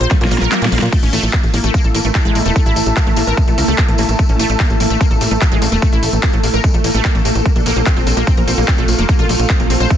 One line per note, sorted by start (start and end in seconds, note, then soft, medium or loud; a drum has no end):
0.00 0.07 A#1 medium
0.00 0.93 A#3 medium
0.00 0.93 F4 medium
0.00 0.07 C5 loud
0.00 0.92 F5 medium
0.00 0.93 A#5 medium
0.00 closed hi-hat medium
0.11 0.20 A3 medium
0.11 kick loud
0.11 snare medium
0.11 closed hi-hat medium
0.11 swell medium
0.21 0.28 A#2 medium
0.21 0.25 A#3 medium
0.21 snare medium
0.21 closed hi-hat medium
0.31 0.38 A#1 medium
0.31 0.35 A#3 medium
0.31 open hi-hat loud
0.38 0.48 A#1 medium
0.38 0.45 A#4 loud
0.38 snare medium
0.38 closed hi-hat medium
0.52 0.58 A#3 loud
0.52 snare medium
0.52 clap loud
0.52 closed hi-hat medium
0.62 0.68 A#2 medium
0.62 0.68 A#3 medium
0.62 snare medium
0.62 closed hi-hat medium
0.72 0.79 A#1 loud
0.72 0.76 A#3 medium
0.72 open hi-hat loud
0.79 0.89 A#2 medium
0.79 snare loud
0.79 closed hi-hat medium
0.92 9.97 A3 medium
0.92 1.01 A3 medium
0.92 7.46 A3 medium
0.92 9.97 A4 medium
0.92 kick loud
0.92 closed hi-hat medium
0.92 crash medium
0.92 tambourine soft
1.01 1.09 A1 medium
1.01 1.09 C#4 medium
1.01 7.46 E4 medium
1.01 closed hi-hat medium
1.01 tambourine soft
1.13 1.19 A1 loud
1.13 1.19 A3 loud
1.13 open hi-hat loud
1.13 tambourine medium
1.20 1.30 A1 medium
1.20 1.32 A3 medium
1.20 7.46 E5 medium
1.20 closed hi-hat medium
1.20 tambourine soft
1.28 7.46 A5 medium
1.33 kick loud
1.33 clap loud
1.33 closed hi-hat medium
1.33 tambourine medium
1.43 1.50 A1 medium
1.43 closed hi-hat medium
1.43 tambourine soft
1.54 1.60 A1 loud
1.54 1.63 A#3 medium
1.54 open hi-hat loud
1.54 tambourine medium
1.64 1.70 A1 medium
1.64 1.70 A3 loud
1.64 closed hi-hat medium
1.64 tambourine soft
1.74 1.78 A#3 loud
1.74 kick loud
1.74 closed hi-hat medium
1.74 tambourine medium
1.84 1.91 A1 medium
1.84 1.93 A4 medium
1.84 closed hi-hat soft
1.84 tambourine soft
1.95 2.01 A1 loud
1.95 2.00 A#3 medium
1.95 open hi-hat loud
1.95 tambourine medium
2.05 2.11 A1 medium
2.05 2.14 A3 medium
2.05 closed hi-hat medium
2.05 tambourine soft
2.15 2.21 A#3 medium
2.15 kick loud
2.15 clap loud
2.15 closed hi-hat medium
2.15 tambourine medium
2.25 2.32 A1 medium
2.25 2.31 G#3 loud
2.25 closed hi-hat medium
2.25 tambourine soft
2.35 2.42 A1 medium
2.35 2.44 A#3 medium
2.35 open hi-hat loud
2.35 tambourine medium
2.45 2.52 E1 medium
2.45 2.49 A3 loud
2.45 closed hi-hat medium
2.45 tambourine soft
2.56 2.65 A3 loud
2.56 kick loud
2.56 closed hi-hat medium
2.56 tambourine medium
2.66 2.73 A1 medium
2.66 2.72 E4 loud
2.66 closed hi-hat medium
2.66 tambourine soft
2.76 2.83 A1 loud
2.76 open hi-hat loud
2.76 tambourine medium
2.86 2.93 A1 medium
2.86 closed hi-hat medium
2.86 tambourine soft
2.97 3.02 A#3 medium
2.97 kick loud
2.97 clap loud
2.97 closed hi-hat medium
2.97 tambourine medium
3.06 3.13 A1 medium
3.06 3.13 A3 medium
3.06 closed hi-hat medium
3.06 tambourine soft
3.16 3.24 A1 loud
3.16 3.26 A#3 medium
3.16 open hi-hat loud
3.16 tambourine medium
3.26 3.34 A1 medium
3.26 3.33 A#4 loud
3.26 closed hi-hat medium
3.26 tambourine soft
3.37 3.46 G#3 medium
3.37 kick loud
3.37 closed hi-hat medium
3.37 tambourine medium
3.48 3.54 A#1 medium
3.48 3.51 A3 medium
3.48 closed hi-hat soft
3.48 tambourine soft
3.58 3.64 C#2 medium
3.58 3.67 A#3 medium
3.58 open hi-hat loud
3.58 tambourine medium
3.68 3.75 C#2 loud
3.68 3.77 A3 loud
3.68 closed hi-hat medium
3.68 tambourine soft
3.78 3.84 A#3 loud
3.78 kick loud
3.78 clap loud
3.78 closed hi-hat medium
3.78 tambourine soft
3.88 3.95 A1 medium
3.88 3.94 A3 medium
3.88 closed hi-hat medium
3.88 tambourine soft
3.98 4.05 A1 loud
3.98 4.07 A#3 medium
3.98 open hi-hat loud
3.98 tambourine medium
4.09 4.15 A1 medium
4.09 closed hi-hat medium
4.09 tambourine soft
4.19 4.28 A3 medium
4.19 kick loud
4.19 closed hi-hat medium
4.19 tambourine medium
4.29 4.36 A1 medium
4.29 4.35 C#4 medium
4.29 closed hi-hat soft
4.29 tambourine soft
4.39 4.46 A1 loud
4.39 4.45 A3 loud
4.39 open hi-hat loud
4.39 tambourine loud
4.50 4.56 A1 medium
4.50 4.58 A3 medium
4.50 closed hi-hat medium
4.50 tambourine soft
4.60 4.66 A#3 medium
4.60 kick loud
4.60 clap loud
4.60 closed hi-hat medium
4.60 tambourine soft
4.70 4.77 A1 medium
4.70 closed hi-hat soft
4.70 tambourine soft
4.80 4.87 A1 loud
4.80 4.89 A#3 medium
4.80 open hi-hat loud
4.80 tambourine medium
4.90 4.97 A1 medium
4.90 4.96 A3 loud
4.90 closed hi-hat medium
4.90 tambourine soft
5.01 5.04 A#3 loud
5.01 kick loud
5.01 closed hi-hat medium
5.01 tambourine medium
5.11 5.17 A1 medium
5.11 5.20 A4 medium
5.11 closed hi-hat soft
5.11 tambourine soft
5.21 5.28 A1 loud
5.21 5.27 A#3 medium
5.21 open hi-hat loud
5.21 tambourine loud
5.31 5.38 A1 loud
5.31 5.40 A3 medium
5.31 closed hi-hat soft
5.31 tambourine soft
5.41 5.47 A#3 medium
5.41 kick loud
5.41 clap loud
5.41 closed hi-hat medium
5.41 tambourine soft
5.52 5.58 A1 medium
5.52 5.58 G#3 loud
5.52 closed hi-hat medium
5.52 tambourine soft
5.62 5.68 A1 loud
5.62 5.71 A#3 medium
5.62 open hi-hat loud
5.62 tambourine loud
5.72 5.79 E1 medium
5.72 5.76 A3 loud
5.72 closed hi-hat medium
5.72 tambourine soft
5.82 5.91 A3 loud
5.82 kick loud
5.82 closed hi-hat medium
5.82 tambourine soft
5.92 5.99 A1 medium
5.92 5.98 E4 loud
5.92 closed hi-hat soft
5.92 tambourine soft
6.03 6.09 A1 loud
6.03 open hi-hat loud
6.03 tambourine medium
6.13 6.19 A1 medium
6.13 closed hi-hat medium
6.13 tambourine soft
6.23 6.29 A#3 medium
6.23 kick loud
6.23 clap loud
6.23 closed hi-hat medium
6.23 tambourine medium
6.33 6.40 A1 medium
6.33 6.39 A3 medium
6.33 closed hi-hat soft
6.33 tambourine soft
6.43 6.50 A1 medium
6.43 6.52 A#3 medium
6.43 open hi-hat loud
6.43 tambourine loud
6.54 6.60 A1 medium
6.54 6.60 A#4 loud
6.54 closed hi-hat soft
6.54 tambourine soft
6.64 6.73 G#3 medium
6.64 kick loud
6.64 closed hi-hat medium
6.64 tambourine medium
6.74 6.81 A#1 medium
6.74 6.78 A3 medium
6.74 closed hi-hat soft
6.74 tambourine soft
6.84 6.91 A1 loud
6.84 6.93 A#3 medium
6.84 open hi-hat loud
6.84 tambourine loud
6.95 7.01 A1 loud
6.95 7.03 A3 loud
6.95 closed hi-hat medium
6.95 tambourine soft
7.04 7.11 A#3 loud
7.04 kick loud
7.04 clap loud
7.04 closed hi-hat medium
7.04 tambourine medium
7.15 7.21 A1 medium
7.15 7.21 A3 medium
7.15 closed hi-hat medium
7.15 tambourine soft
7.25 7.32 A1 loud
7.25 7.34 A#3 medium
7.25 open hi-hat loud
7.25 tambourine medium
7.35 7.42 A1 medium
7.35 closed hi-hat medium
7.35 tambourine soft
7.45 7.54 A#3 medium
7.45 kick loud
7.45 closed hi-hat medium
7.45 tambourine medium
7.56 7.62 A#1 medium
7.56 7.62 D4 medium
7.56 closed hi-hat soft
7.56 tambourine soft
7.66 7.73 A#1 loud
7.66 7.72 A#3 loud
7.66 9.97 F4 medium
7.66 open hi-hat loud
7.66 tambourine medium
7.75 7.83 A#1 loud
7.75 7.85 A#3 medium
7.75 9.97 F5 medium
7.75 closed hi-hat medium
7.75 tambourine soft
7.86 7.92 C4 medium
7.86 kick loud
7.86 clap loud
7.86 closed hi-hat medium
7.86 tambourine soft
7.96 8.03 A#1 medium
7.96 8.05 C4 medium
7.96 closed hi-hat soft
7.96 tambourine soft
8.07 8.13 A#1 loud
8.07 8.16 C4 medium
8.07 open hi-hat loud
8.07 tambourine medium
8.17 8.24 A#1 medium
8.17 8.23 A#3 loud
8.17 closed hi-hat medium
8.17 tambourine soft
8.27 8.31 C4 loud
8.27 kick loud
8.27 closed hi-hat medium
8.27 tambourine medium
8.37 8.44 A#1 medium
8.37 8.46 A#4 medium
8.37 closed hi-hat medium
8.37 tambourine soft
8.48 8.54 A#1 loud
8.48 8.53 C4 medium
8.48 open hi-hat loud
8.48 tambourine medium
8.58 8.64 A#1 medium
8.58 8.67 A#3 medium
8.58 closed hi-hat medium
8.58 tambourine soft
8.68 8.74 C4 medium
8.68 kick loud
8.68 clap loud
8.68 closed hi-hat medium
8.68 tambourine medium
8.78 8.85 A#1 medium
8.78 8.84 A3 loud
8.78 closed hi-hat medium
8.78 tambourine soft
8.88 8.95 A#1 loud
8.88 open hi-hat loud
8.88 tambourine medium
8.99 9.05 F1 medium
8.99 9.02 A#3 loud
8.99 closed hi-hat medium
8.99 tambourine soft
9.09 9.18 A#3 medium
9.09 kick loud
9.09 closed hi-hat medium
9.09 tambourine soft
9.19 9.26 A#1 medium
9.19 9.25 F4 loud
9.19 closed hi-hat soft
9.19 tambourine soft
9.29 9.36 A#1 loud
9.29 open hi-hat loud
9.29 tambourine medium
9.39 9.46 A#1 medium
9.39 closed hi-hat medium
9.39 tambourine soft
9.50 9.56 C4 medium
9.50 kick loud
9.50 clap loud
9.50 closed hi-hat medium
9.60 9.66 A#1 medium
9.60 9.66 A#3 medium
9.60 closed hi-hat medium
9.60 tambourine soft
9.70 9.77 A#1 medium
9.70 9.79 C4 medium
9.70 open hi-hat loud
9.70 tambourine medium
9.80 9.87 A#1 medium
9.80 9.86 C5 loud
9.80 closed hi-hat soft
9.80 tambourine soft
9.90 9.97 A3 medium
9.90 kick loud
9.90 closed hi-hat medium
9.90 tambourine soft